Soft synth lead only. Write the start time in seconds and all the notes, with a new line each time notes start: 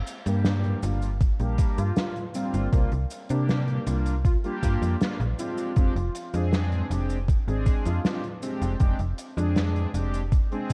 1.78 F4
2.35 C4
3.30 D4
4.25 F4
4.44 F4
4.63 F4
5.39 F4
7.86 F4
8.42 C4
9.37 D4
10.51 C4